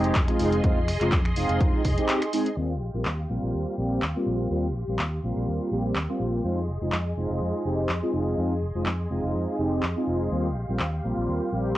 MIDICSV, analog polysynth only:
0, 0, Header, 1, 2, 480
1, 0, Start_track
1, 0, Key_signature, -3, "major"
1, 0, Tempo, 483871
1, 631, Time_signature, 4, 2, 24, 8
1, 11685, End_track
2, 0, Start_track
2, 0, Title_t, "Analog polysynth"
2, 0, Program_c, 0, 90
2, 0, Note_on_c, 0, 56, 96
2, 0, Note_on_c, 0, 60, 87
2, 0, Note_on_c, 0, 63, 86
2, 0, Note_on_c, 0, 67, 109
2, 138, Note_off_c, 0, 56, 0
2, 140, Note_off_c, 0, 60, 0
2, 141, Note_off_c, 0, 63, 0
2, 142, Note_off_c, 0, 67, 0
2, 273, Note_on_c, 0, 56, 84
2, 275, Note_on_c, 0, 60, 75
2, 279, Note_on_c, 0, 63, 78
2, 280, Note_on_c, 0, 65, 93
2, 601, Note_off_c, 0, 56, 0
2, 602, Note_off_c, 0, 60, 0
2, 604, Note_off_c, 0, 63, 0
2, 605, Note_off_c, 0, 65, 0
2, 624, Note_on_c, 0, 56, 92
2, 627, Note_on_c, 0, 60, 85
2, 630, Note_on_c, 0, 63, 85
2, 632, Note_on_c, 0, 65, 102
2, 778, Note_off_c, 0, 56, 0
2, 780, Note_off_c, 0, 60, 0
2, 782, Note_off_c, 0, 63, 0
2, 783, Note_off_c, 0, 65, 0
2, 996, Note_on_c, 0, 56, 81
2, 999, Note_on_c, 0, 60, 77
2, 1000, Note_on_c, 0, 63, 74
2, 1004, Note_on_c, 0, 65, 91
2, 1135, Note_off_c, 0, 56, 0
2, 1136, Note_off_c, 0, 60, 0
2, 1137, Note_off_c, 0, 63, 0
2, 1139, Note_off_c, 0, 65, 0
2, 1347, Note_on_c, 0, 56, 83
2, 1350, Note_on_c, 0, 60, 74
2, 1352, Note_on_c, 0, 63, 74
2, 1355, Note_on_c, 0, 65, 88
2, 1803, Note_off_c, 0, 56, 0
2, 1804, Note_off_c, 0, 60, 0
2, 1805, Note_off_c, 0, 63, 0
2, 1807, Note_off_c, 0, 65, 0
2, 1957, Note_on_c, 0, 56, 82
2, 1960, Note_on_c, 0, 60, 75
2, 1962, Note_on_c, 0, 63, 74
2, 1966, Note_on_c, 0, 67, 91
2, 2188, Note_off_c, 0, 56, 0
2, 2190, Note_off_c, 0, 60, 0
2, 2190, Note_off_c, 0, 63, 0
2, 2192, Note_off_c, 0, 67, 0
2, 2307, Note_on_c, 0, 56, 99
2, 2310, Note_on_c, 0, 60, 89
2, 2312, Note_on_c, 0, 63, 88
2, 2314, Note_on_c, 0, 68, 106
2, 2460, Note_off_c, 0, 56, 0
2, 2461, Note_off_c, 0, 60, 0
2, 2462, Note_off_c, 0, 63, 0
2, 2464, Note_off_c, 0, 68, 0
2, 2547, Note_on_c, 0, 55, 84
2, 2550, Note_on_c, 0, 58, 81
2, 2553, Note_on_c, 0, 60, 80
2, 2556, Note_on_c, 0, 65, 93
2, 2700, Note_off_c, 0, 55, 0
2, 2702, Note_off_c, 0, 58, 0
2, 2703, Note_off_c, 0, 60, 0
2, 2705, Note_off_c, 0, 65, 0
2, 2916, Note_on_c, 0, 55, 76
2, 2917, Note_on_c, 0, 58, 69
2, 2922, Note_on_c, 0, 60, 71
2, 2923, Note_on_c, 0, 65, 86
2, 3055, Note_off_c, 0, 55, 0
2, 3055, Note_off_c, 0, 58, 0
2, 3058, Note_off_c, 0, 60, 0
2, 3058, Note_off_c, 0, 65, 0
2, 3266, Note_on_c, 0, 55, 77
2, 3268, Note_on_c, 0, 58, 68
2, 3271, Note_on_c, 0, 60, 71
2, 3274, Note_on_c, 0, 65, 84
2, 3722, Note_off_c, 0, 55, 0
2, 3723, Note_off_c, 0, 58, 0
2, 3725, Note_off_c, 0, 60, 0
2, 3726, Note_off_c, 0, 65, 0
2, 3748, Note_on_c, 0, 55, 91
2, 3750, Note_on_c, 0, 58, 82
2, 3753, Note_on_c, 0, 60, 84
2, 3755, Note_on_c, 0, 67, 101
2, 3980, Note_off_c, 0, 55, 0
2, 3981, Note_off_c, 0, 58, 0
2, 3983, Note_off_c, 0, 60, 0
2, 3984, Note_off_c, 0, 67, 0
2, 4118, Note_on_c, 0, 55, 78
2, 4120, Note_on_c, 0, 58, 72
2, 4123, Note_on_c, 0, 60, 72
2, 4126, Note_on_c, 0, 65, 87
2, 4444, Note_off_c, 0, 55, 0
2, 4444, Note_off_c, 0, 58, 0
2, 4446, Note_off_c, 0, 60, 0
2, 4448, Note_off_c, 0, 65, 0
2, 4469, Note_on_c, 0, 55, 85
2, 4472, Note_on_c, 0, 58, 80
2, 4475, Note_on_c, 0, 60, 80
2, 4476, Note_on_c, 0, 65, 92
2, 4621, Note_off_c, 0, 55, 0
2, 4623, Note_off_c, 0, 58, 0
2, 4624, Note_off_c, 0, 60, 0
2, 4625, Note_off_c, 0, 65, 0
2, 4842, Note_on_c, 0, 55, 77
2, 4845, Note_on_c, 0, 58, 72
2, 4848, Note_on_c, 0, 60, 71
2, 4850, Note_on_c, 0, 65, 87
2, 4978, Note_off_c, 0, 55, 0
2, 4979, Note_off_c, 0, 58, 0
2, 4980, Note_off_c, 0, 60, 0
2, 4982, Note_off_c, 0, 65, 0
2, 5192, Note_on_c, 0, 55, 77
2, 5195, Note_on_c, 0, 58, 70
2, 5197, Note_on_c, 0, 60, 70
2, 5200, Note_on_c, 0, 65, 83
2, 5645, Note_off_c, 0, 55, 0
2, 5647, Note_off_c, 0, 58, 0
2, 5648, Note_off_c, 0, 60, 0
2, 5649, Note_off_c, 0, 65, 0
2, 5673, Note_on_c, 0, 55, 92
2, 5675, Note_on_c, 0, 58, 85
2, 5678, Note_on_c, 0, 60, 84
2, 5680, Note_on_c, 0, 67, 100
2, 5903, Note_off_c, 0, 55, 0
2, 5904, Note_off_c, 0, 58, 0
2, 5905, Note_off_c, 0, 60, 0
2, 5906, Note_off_c, 0, 67, 0
2, 6038, Note_on_c, 0, 55, 79
2, 6040, Note_on_c, 0, 58, 73
2, 6044, Note_on_c, 0, 60, 74
2, 6048, Note_on_c, 0, 65, 88
2, 6364, Note_off_c, 0, 55, 0
2, 6365, Note_off_c, 0, 58, 0
2, 6367, Note_off_c, 0, 60, 0
2, 6368, Note_off_c, 0, 65, 0
2, 6389, Note_on_c, 0, 56, 85
2, 6392, Note_on_c, 0, 60, 81
2, 6393, Note_on_c, 0, 63, 79
2, 6397, Note_on_c, 0, 65, 95
2, 6541, Note_off_c, 0, 56, 0
2, 6543, Note_off_c, 0, 60, 0
2, 6543, Note_off_c, 0, 63, 0
2, 6545, Note_off_c, 0, 65, 0
2, 6760, Note_on_c, 0, 56, 78
2, 6763, Note_on_c, 0, 60, 71
2, 6765, Note_on_c, 0, 63, 71
2, 6770, Note_on_c, 0, 65, 83
2, 6897, Note_off_c, 0, 56, 0
2, 6898, Note_off_c, 0, 60, 0
2, 6899, Note_off_c, 0, 63, 0
2, 6902, Note_off_c, 0, 65, 0
2, 7110, Note_on_c, 0, 56, 79
2, 7113, Note_on_c, 0, 60, 71
2, 7115, Note_on_c, 0, 63, 70
2, 7119, Note_on_c, 0, 65, 86
2, 7564, Note_off_c, 0, 56, 0
2, 7565, Note_off_c, 0, 60, 0
2, 7567, Note_off_c, 0, 63, 0
2, 7568, Note_off_c, 0, 65, 0
2, 7589, Note_on_c, 0, 56, 91
2, 7591, Note_on_c, 0, 60, 85
2, 7594, Note_on_c, 0, 63, 83
2, 7597, Note_on_c, 0, 67, 100
2, 7821, Note_off_c, 0, 56, 0
2, 7822, Note_off_c, 0, 60, 0
2, 7823, Note_off_c, 0, 63, 0
2, 7825, Note_off_c, 0, 67, 0
2, 7957, Note_on_c, 0, 56, 79
2, 7959, Note_on_c, 0, 60, 72
2, 7961, Note_on_c, 0, 63, 72
2, 7963, Note_on_c, 0, 65, 87
2, 8283, Note_off_c, 0, 56, 0
2, 8284, Note_off_c, 0, 60, 0
2, 8285, Note_off_c, 0, 63, 0
2, 8286, Note_off_c, 0, 65, 0
2, 8310, Note_on_c, 0, 56, 87
2, 8312, Note_on_c, 0, 60, 79
2, 8314, Note_on_c, 0, 63, 78
2, 8315, Note_on_c, 0, 65, 93
2, 8461, Note_off_c, 0, 56, 0
2, 8462, Note_off_c, 0, 60, 0
2, 8464, Note_off_c, 0, 63, 0
2, 8464, Note_off_c, 0, 65, 0
2, 8677, Note_on_c, 0, 56, 77
2, 8679, Note_on_c, 0, 60, 70
2, 8681, Note_on_c, 0, 63, 70
2, 8684, Note_on_c, 0, 65, 85
2, 8815, Note_off_c, 0, 56, 0
2, 8816, Note_off_c, 0, 60, 0
2, 8817, Note_off_c, 0, 63, 0
2, 8819, Note_off_c, 0, 65, 0
2, 9026, Note_on_c, 0, 56, 76
2, 9029, Note_on_c, 0, 60, 70
2, 9032, Note_on_c, 0, 63, 69
2, 9035, Note_on_c, 0, 65, 85
2, 9482, Note_off_c, 0, 56, 0
2, 9484, Note_off_c, 0, 60, 0
2, 9485, Note_off_c, 0, 63, 0
2, 9486, Note_off_c, 0, 65, 0
2, 9508, Note_on_c, 0, 56, 90
2, 9510, Note_on_c, 0, 60, 83
2, 9512, Note_on_c, 0, 63, 84
2, 9515, Note_on_c, 0, 67, 99
2, 9740, Note_off_c, 0, 56, 0
2, 9742, Note_off_c, 0, 60, 0
2, 9742, Note_off_c, 0, 63, 0
2, 9744, Note_off_c, 0, 67, 0
2, 9878, Note_on_c, 0, 56, 78
2, 9881, Note_on_c, 0, 60, 73
2, 9883, Note_on_c, 0, 63, 72
2, 9885, Note_on_c, 0, 65, 88
2, 10203, Note_off_c, 0, 56, 0
2, 10205, Note_off_c, 0, 60, 0
2, 10206, Note_off_c, 0, 63, 0
2, 10207, Note_off_c, 0, 65, 0
2, 10228, Note_on_c, 0, 55, 84
2, 10232, Note_on_c, 0, 58, 81
2, 10234, Note_on_c, 0, 60, 80
2, 10236, Note_on_c, 0, 65, 97
2, 10380, Note_off_c, 0, 55, 0
2, 10383, Note_off_c, 0, 58, 0
2, 10384, Note_off_c, 0, 60, 0
2, 10385, Note_off_c, 0, 65, 0
2, 10597, Note_on_c, 0, 55, 80
2, 10601, Note_on_c, 0, 58, 72
2, 10604, Note_on_c, 0, 60, 70
2, 10606, Note_on_c, 0, 65, 87
2, 10735, Note_off_c, 0, 55, 0
2, 10737, Note_off_c, 0, 58, 0
2, 10739, Note_off_c, 0, 60, 0
2, 10740, Note_off_c, 0, 65, 0
2, 10947, Note_on_c, 0, 55, 77
2, 10949, Note_on_c, 0, 58, 71
2, 10951, Note_on_c, 0, 60, 70
2, 10954, Note_on_c, 0, 65, 84
2, 11402, Note_off_c, 0, 55, 0
2, 11404, Note_off_c, 0, 58, 0
2, 11404, Note_off_c, 0, 60, 0
2, 11406, Note_off_c, 0, 65, 0
2, 11427, Note_on_c, 0, 55, 92
2, 11429, Note_on_c, 0, 58, 83
2, 11433, Note_on_c, 0, 60, 85
2, 11435, Note_on_c, 0, 67, 104
2, 11660, Note_off_c, 0, 55, 0
2, 11661, Note_off_c, 0, 58, 0
2, 11663, Note_off_c, 0, 60, 0
2, 11664, Note_off_c, 0, 67, 0
2, 11685, End_track
0, 0, End_of_file